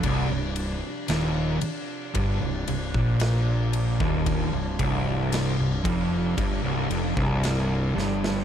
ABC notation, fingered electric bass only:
X:1
M:4/4
L:1/16
Q:1/4=57
K:Cm
V:1 name="Fingered electric bass" clef=bass
C,,, C,,,2 z E,,,2 z2 G,,, C,,, C,,, B,,,4 E,,,- | E,,, C,,, C,,,3 C,,, F,,,2 G,,, C,,, F,,, C,,,3 G,,,2 |]